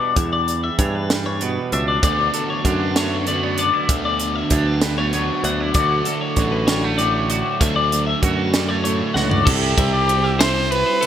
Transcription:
Already playing: clean electric guitar E2 B2 E3 G3 B3 D4 D5
0.16 picked electric bass E2, clean electric guitar E2 E5, kick, closed hi-hat
0.33 clean electric guitar D5
0.48 closed hi-hat
0.64 clean electric guitar E5
0.79 picked electric bass G2, clean electric guitar E3 D4 C#5, kick, closed hi-hat
0.95 clean electric guitar B4
1.10 clean electric guitar G3, snare, closed hi-hat
1.26 clean electric guitar C#5
1.41 clean electric guitar B2 B3 B4, closed hi-hat
1.72 picked electric bass C#2, clean electric guitar D4 E5, closed hi-hat
1.88 clean electric guitar D5
2.03 picked electric bass D2, clean electric guitar D2 D5, overdriven electric guitar D3 F#3 B3 D4, kick, closed hi-hat
2.33 overdriven electric guitar F#3 B3 D4, clean electric guitar A4, closed hi-hat
2.50 clean electric guitar C#5
2.65 picked electric bass F#2, overdriven electric guitar D3 F#3 B3 D4, clean electric guitar D3 D4, kick, closed hi-hat
2.81 clean electric guitar B4
2.96 overdriven electric guitar D3 F#3 B3 D4, clean electric guitar A3 C#5, snare, closed hi-hat
3.27 clean electric guitar D2 A3 D5, overdriven electric guitar D3 F#3 B3 D4, closed hi-hat
3.43 clean electric guitar B3 C#5
3.58 clean electric guitar D4 D5, closed hi-hat
3.73 clean electric guitar E4
3.89 clean electric guitar D2 E5, picked electric bass D2, overdriven electric guitar D3 F#3 B3 D4, kick, closed hi-hat
4.05 clean electric guitar D5
4.20 overdriven electric guitar F#3 B3 D4, closed hi-hat
4.36 clean electric guitar E5
4.50 picked electric bass D2, clean electric guitar D3 D4 C#5, overdriven electric guitar D3 F#3 B3 D4, kick, closed hi-hat
4.67 clean electric guitar B4
4.81 overdriven electric guitar D3 F#3 B3 D4, clean electric guitar G3, snare, closed hi-hat
4.98 clean electric guitar A3 C#5
5.13 clean electric guitar D2 B3 C#5, overdriven electric guitar D3 F#3 B3 D4, closed hi-hat
5.44 picked electric bass D2, clean electric guitar D4 F#5, closed hi-hat
5.60 clean electric guitar E4 D5
5.74 picked electric bass D2, clean electric guitar D2 D3 A3 D5, overdriven electric guitar D3 F#3 A3, kick, closed hi-hat
5.78 overdriven electric guitar D4, clean electric guitar F#4
6.05 overdriven electric guitar F#3 A3 D4, clean electric guitar A4, closed hi-hat
6.21 clean electric guitar C#5
6.36 picked electric bass A1, overdriven electric guitar D3 F#3 A3 D4, clean electric guitar D3 F#4, kick, closed hi-hat
6.52 clean electric guitar B4
6.67 overdriven electric guitar D3 F#3 A3 D4, clean electric guitar G3 C#5, snare, closed hi-hat
6.84 clean electric guitar A3
6.98 clean electric guitar A2 D5, overdriven electric guitar D3 F#3 A3, closed hi-hat
7.02 overdriven electric guitar D4
7.14 clean electric guitar C#5
7.30 clean electric guitar F#4 D5, closed hi-hat
7.61 picked electric bass D2, clean electric guitar D2 E5, overdriven electric guitar D3 F#3 A3 D4, kick, closed hi-hat
7.76 clean electric guitar D5
7.92 overdriven electric guitar F#3 A3 D4, closed hi-hat
8.07 clean electric guitar E5
8.22 picked electric bass F#2, overdriven electric guitar D3 F#3 A3, clean electric guitar F#4 C#5, kick, closed hi-hat
8.26 overdriven electric guitar D4
8.37 clean electric guitar B4
8.54 overdriven electric guitar D3 F#3 A3 D4, clean electric guitar G3, snare, closed hi-hat
8.69 clean electric guitar A3 C#5
8.84 clean electric guitar A2 C#5, overdriven electric guitar D3 F#3 A3 D4, closed hi-hat
9.14 picked electric bass C#2, clean electric guitar F#4 F#5, snare
9.30 clean electric guitar D5, floor tom
9.45 picked electric bass C2, overdriven electric guitar C3 G3 C4, trumpet G4, clean electric guitar A4, kick, crash
9.50 overdriven electric guitar E4
9.78 picked electric bass C2, clean electric guitar E5, kick, ride
9.93 clean electric guitar D5
10.09 ride
10.24 clean electric guitar E5
10.39 overdriven electric guitar C3 G3 C4 E4, clean electric guitar C5, trumpet C5, snare, ride
10.71 clean electric guitar B4, trumpet B4, ride
10.86 clean electric guitar C5
11.01 clean electric guitar A4, ride

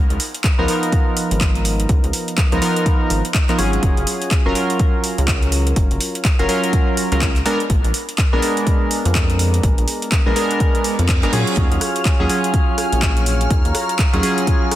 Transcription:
0.10 analog synth bass C#2, closed hi-hat
0.20 open hi-hat
0.34 closed hi-hat
0.44 kick, clap, closed hi-hat
0.58 analog synth bass C#2, synth keys F3 B3 D#4 A#4
0.68 synth keys F3 B3 D#4 A#4, open hi-hat
0.83 closed hi-hat
0.92 kick, closed hi-hat
1.17 open hi-hat
1.31 analog synth bass G#1, closed hi-hat
1.41 kick, clap, closed hi-hat
1.55 closed hi-hat
1.65 open hi-hat
1.80 closed hi-hat
1.89 analog synth bass C#2, kick, closed hi-hat
2.04 analog synth bass C#2, closed hi-hat
2.13 open hi-hat
2.28 closed hi-hat
2.38 kick, clap, closed hi-hat
2.52 analog synth bass C#2, synth keys F3 B3 D#4 A#4, closed hi-hat
2.61 synth keys F3 B3 D#4 A#4, open hi-hat
2.76 closed hi-hat
2.86 kick, closed hi-hat
3.10 analog synth bass G#1, open hi-hat
3.25 closed hi-hat
3.34 kick, clap, closed hi-hat
3.49 synth keys F3 B3 D#4 A#4, clap, closed hi-hat
3.58 analog synth bass G#1, synth keys F#3 C#4 F4 G#4, open hi-hat
3.73 closed hi-hat
3.83 analog synth bass F#1, kick, closed hi-hat
3.97 analog synth bass F#1, closed hi-hat
4.07 open hi-hat
4.22 closed hi-hat
4.31 kick, clap, closed hi-hat
4.46 analog synth bass F#1, synth keys F#3 C#4 F4 A#4
4.55 synth keys F#3 C#4 F4 A#4, open hi-hat
4.70 closed hi-hat
4.79 kick, closed hi-hat
5.04 open hi-hat
5.18 analog synth bass C#2, closed hi-hat
5.28 kick, clap, closed hi-hat
5.42 closed hi-hat
5.52 open hi-hat
5.67 closed hi-hat
5.76 analog synth bass F#1, kick, closed hi-hat
5.91 analog synth bass F#1, closed hi-hat
6.01 open hi-hat
6.15 closed hi-hat
6.25 kick, clap, closed hi-hat
6.39 analog synth bass F#1, synth keys F#3 C#4 F4 A#4, closed hi-hat
6.48 synth keys F#3 C#4 F4 A#4, open hi-hat
6.64 closed hi-hat
6.73 kick, closed hi-hat
6.97 open hi-hat
7.12 analog synth bass C#2, synth keys F#3 C#4 F4 A#4, closed hi-hat
7.21 kick, clap, closed hi-hat
7.36 clap, closed hi-hat
7.45 synth keys G#3 B3 D4 A#4, open hi-hat
7.60 closed hi-hat
7.70 analog synth bass A#1, kick, closed hi-hat
7.84 analog synth bass A#1, closed hi-hat
7.94 open hi-hat
8.09 closed hi-hat
8.18 kick, clap, closed hi-hat
8.33 analog synth bass A#1, synth keys G#3 B3 D4 A#4
8.42 synth keys G#3 B3 D4 A#4, open hi-hat
8.57 closed hi-hat
8.67 kick, closed hi-hat
8.91 open hi-hat
9.05 analog synth bass F2, closed hi-hat
9.15 kick, clap, closed hi-hat
9.30 closed hi-hat
9.39 open hi-hat
9.54 closed hi-hat
9.63 analog synth bass A#1, kick, closed hi-hat
9.78 analog synth bass A#1, closed hi-hat
9.88 open hi-hat
10.02 closed hi-hat
10.12 kick, clap, closed hi-hat
10.26 analog synth bass A#1, synth keys G#3 B3 D4 A#4
10.36 synth keys G#3 B3 D4 A#4, open hi-hat
10.51 closed hi-hat
10.60 kick, closed hi-hat, reverse cymbal
10.75 closed hi-hat
10.84 open hi-hat
10.99 analog synth bass F2, closed hi-hat
11.09 kick, clap, closed hi-hat
11.23 analog synth bass G#1, synth keys G#3 B3 D4 A#4, clap, closed hi-hat
11.32 analog synth bass A#2, synth keys F#3 C#4 F4 G#4, open hi-hat
11.47 closed hi-hat
11.57 analog synth bass D#2, analog synth pad C#5 F5 G#5, string machine F6, kick, closed hi-hat
11.72 analog synth bass D#2, closed hi-hat
11.81 cross-stick, open hi-hat
11.96 closed hi-hat
12.05 kick, clap, closed hi-hat
12.20 analog synth bass D#2, synth keys F#3 C#4 F4 G#4
12.29 synth keys F#3 C#4 F4 G#4, open hi-hat
12.44 closed hi-hat
12.54 kick, closed hi-hat
12.78 cross-stick, open hi-hat
12.93 analog synth bass A#1, closed hi-hat
13.02 kick, clap, closed hi-hat
13.17 closed hi-hat
13.26 open hi-hat
13.41 closed hi-hat
13.50 analog synth bass D#2, analog synth pad A#5, kick, closed hi-hat
13.65 analog synth bass D#2, closed hi-hat
13.75 cross-stick, open hi-hat
13.89 closed hi-hat
13.99 kick, clap, closed hi-hat
14.13 analog synth bass D#2, synth keys F#3 C#4 F4 G#4, closed hi-hat
14.23 synth keys F#3 C#4 F4 G#4, open hi-hat
14.38 closed hi-hat
14.47 kick, closed hi-hat
14.71 cross-stick, open hi-hat

